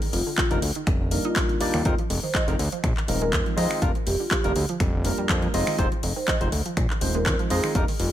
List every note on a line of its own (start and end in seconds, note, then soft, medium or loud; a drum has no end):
0.02 0.05 D#3 loud
0.02 open hi-hat medium
0.13 0.23 F1 medium
0.13 0.19 G3 medium
0.13 0.27 F4 medium
0.13 open hi-hat loud
0.27 0.30 D3 loud
0.38 0.44 D#3 loud
0.38 0.52 F4 medium
0.38 kick loud
0.38 clap loud
0.38 closed hi-hat medium
0.50 0.59 F1 loud
0.50 0.58 G3 medium
0.50 0.58 A#3 medium
0.50 0.54 A#3 medium
0.50 0.58 D4 medium
0.50 0.58 D#4 medium
0.50 0.58 A#4 loud
0.50 closed hi-hat medium
0.62 0.72 D2 loud
0.62 0.68 D3 medium
0.62 open hi-hat loud
0.75 0.81 D#3 loud
0.75 closed hi-hat medium
0.87 1.19 F1 loud
0.87 0.93 G3 medium
0.87 finger snap medium
0.87 kick loud
0.87 closed hi-hat medium
1.01 1.05 D3 medium
1.11 1.20 D3 medium
1.11 1.58 G3 medium
1.11 1.58 A#3 medium
1.11 1.58 D4 medium
1.11 1.58 D#4 medium
1.11 1.58 A#4 medium
1.11 open hi-hat loud
1.25 1.30 D#4 loud
1.25 1.91 F4 loud
1.25 closed hi-hat soft
1.36 1.40 G3 loud
1.36 finger snap medium
1.36 kick loud
1.36 clap loud
1.36 closed hi-hat medium
1.49 1.54 D3 medium
1.49 closed hi-hat soft
1.60 1.71 D#2 soft
1.60 1.82 G3 medium
1.60 1.82 A#3 medium
1.60 1.82 D4 medium
1.60 1.70 D4 medium
1.60 1.83 D#4 medium
1.60 1.83 D5 loud
1.60 open hi-hat loud
1.74 1.82 D#2 medium
1.74 1.79 D3 loud
1.74 finger snap medium
1.74 open hi-hat medium
1.85 1.95 F1 loud
1.85 1.91 D#3 medium
1.85 1.93 G#3 loud
1.85 1.93 C4 medium
1.85 1.94 D#4 medium
1.85 1.94 F4 medium
1.85 1.94 A#4 loud
1.85 kick loud
1.85 closed hi-hat medium
1.98 2.02 F3 loud
1.98 closed hi-hat soft
2.10 2.20 F1 medium
2.10 2.16 G#3 medium
2.10 open hi-hat loud
2.23 2.26 D#3 loud
2.23 2.32 C5 medium
2.34 2.41 F3 loud
2.34 2.48 D#5 medium
2.34 kick loud
2.34 clap loud
2.34 closed hi-hat medium
2.48 2.56 F1 loud
2.48 2.51 F3 medium
2.48 2.55 G#3 medium
2.48 2.55 C4 medium
2.48 2.55 D#4 medium
2.48 2.55 F4 medium
2.48 2.55 A#4 loud
2.48 closed hi-hat medium
2.59 2.69 D2 loud
2.59 2.65 D#3 medium
2.59 open hi-hat loud
2.72 2.77 F3 loud
2.72 closed hi-hat medium
2.84 2.93 A#1 loud
2.84 2.90 G#3 medium
2.84 finger snap medium
2.84 kick loud
2.84 closed hi-hat medium
2.97 3.02 D#3 medium
2.97 clap soft
3.08 3.34 D#1 medium
3.08 3.12 F3 medium
3.08 3.54 G#3 medium
3.08 3.55 C4 medium
3.08 3.55 D#4 medium
3.08 3.55 F4 medium
3.08 3.55 A#4 medium
3.08 open hi-hat loud
3.21 3.25 G#3 loud
3.21 3.34 A#4 medium
3.21 closed hi-hat soft
3.33 3.42 F2 medium
3.33 3.39 D#3 loud
3.33 finger snap medium
3.33 kick loud
3.33 clap loud
3.33 closed hi-hat medium
3.46 3.54 F3 loud
3.46 closed hi-hat soft
3.56 3.67 F2 medium
3.56 3.79 G#3 medium
3.56 3.61 G#3 medium
3.56 3.79 C4 medium
3.56 3.79 D#4 medium
3.56 3.79 F4 medium
3.56 3.79 D#5 loud
3.56 open hi-hat loud
3.71 3.74 D#3 loud
3.71 finger snap medium
3.81 3.92 F1 loud
3.81 3.88 D3 medium
3.81 3.90 G3 loud
3.81 3.90 A#3 medium
3.81 3.90 D4 medium
3.81 3.90 F4 medium
3.81 3.90 A#4 loud
3.81 kick loud
3.81 closed hi-hat medium
3.95 3.98 F3 loud
3.95 closed hi-hat soft
4.06 4.16 F1 medium
4.06 4.13 G3 medium
4.06 4.17 G4 loud
4.06 open hi-hat loud
4.19 4.23 D3 medium
4.19 4.29 F4 medium
4.31 4.37 F3 loud
4.31 4.39 G4 medium
4.31 kick loud
4.31 clap loud
4.31 closed hi-hat medium
4.44 4.53 F1 loud
4.44 4.48 F3 medium
4.44 4.51 G3 loud
4.44 4.51 A#3 medium
4.44 4.51 D4 medium
4.44 4.51 F4 medium
4.44 4.52 G4 medium
4.44 4.52 A#4 loud
4.44 closed hi-hat medium
4.56 4.66 D2 loud
4.56 4.62 D3 medium
4.56 open hi-hat loud
4.69 4.74 F3 loud
4.69 closed hi-hat medium
4.80 5.12 F1 loud
4.80 4.86 G3 medium
4.80 finger snap medium
4.80 kick loud
4.80 closed hi-hat medium
4.94 4.99 D3 medium
5.04 5.08 F3 medium
5.04 5.51 G3 medium
5.04 5.51 A#3 medium
5.04 5.51 D4 medium
5.04 5.51 F4 medium
5.04 5.52 A#4 medium
5.04 open hi-hat loud
5.18 5.27 F2 soft
5.18 5.21 G3 loud
5.18 closed hi-hat soft
5.29 5.48 F2 loud
5.29 5.36 D3 loud
5.29 finger snap medium
5.29 kick loud
5.29 clap loud
5.29 closed hi-hat medium
5.42 5.50 F3 loud
5.42 closed hi-hat soft
5.54 5.64 F1 medium
5.54 5.76 G#3 medium
5.54 5.58 G#3 medium
5.54 5.76 C4 medium
5.54 5.76 D#4 medium
5.54 5.76 F4 medium
5.54 5.76 D#5 loud
5.54 open hi-hat loud
5.67 5.70 D#3 loud
5.67 finger snap medium
5.67 open hi-hat medium
5.78 5.88 F1 loud
5.78 5.87 G#3 medium
5.78 5.87 C4 medium
5.78 5.87 D#4 medium
5.78 5.87 F4 medium
5.78 5.87 C5 loud
5.78 kick loud
5.78 closed hi-hat medium
5.92 5.95 F3 loud
5.92 closed hi-hat soft
6.03 6.13 F1 medium
6.03 6.09 G#3 medium
6.03 open hi-hat loud
6.16 6.19 D#3 loud
6.16 6.26 C5 medium
6.28 6.34 F3 loud
6.28 6.42 D#5 medium
6.28 kick loud
6.28 clap loud
6.28 closed hi-hat medium
6.40 6.49 F1 loud
6.40 6.44 F3 medium
6.40 6.48 G#3 medium
6.40 6.48 C4 medium
6.40 6.48 D#4 medium
6.40 6.48 F4 medium
6.40 6.48 C5 loud
6.40 closed hi-hat medium
6.52 6.62 D2 loud
6.52 6.58 D#3 medium
6.52 open hi-hat loud
6.66 6.71 F3 loud
6.66 closed hi-hat medium
6.77 6.87 A#1 loud
6.77 6.83 G#3 medium
6.77 finger snap medium
6.77 kick loud
6.77 closed hi-hat medium
6.90 6.95 D#3 medium
6.90 clap soft
7.01 7.28 D#1 medium
7.01 7.05 F3 medium
7.01 7.48 G#3 medium
7.01 7.48 C4 medium
7.01 7.48 D#4 medium
7.01 7.48 F4 medium
7.01 7.48 C5 medium
7.01 open hi-hat loud
7.14 7.18 G#3 loud
7.14 7.27 A#4 medium
7.14 closed hi-hat soft
7.26 7.36 F2 medium
7.26 7.32 D#3 loud
7.26 finger snap medium
7.26 kick loud
7.26 clap loud
7.26 closed hi-hat medium
7.39 7.47 F3 loud
7.39 closed hi-hat soft
7.50 7.61 F2 medium
7.50 7.72 G#3 loud
7.50 7.54 G#3 medium
7.50 7.72 C4 medium
7.50 7.73 D#4 medium
7.50 7.73 F4 medium
7.50 7.65 G#4 medium
7.50 7.73 D#5 loud
7.50 open hi-hat loud
7.64 7.67 D#3 loud
7.64 finger snap medium
7.75 7.85 F1 loud
7.75 7.81 D3 medium
7.75 7.83 G3 loud
7.75 7.83 A#3 medium
7.75 7.84 D4 medium
7.75 7.84 D#4 medium
7.75 7.84 A#4 loud
7.75 kick loud
7.75 closed hi-hat medium
7.88 7.92 D#3 loud
7.88 open hi-hat medium
8.00 8.10 F1 medium
8.00 8.06 G3 medium
8.00 8.12 F4 medium
8.00 open hi-hat loud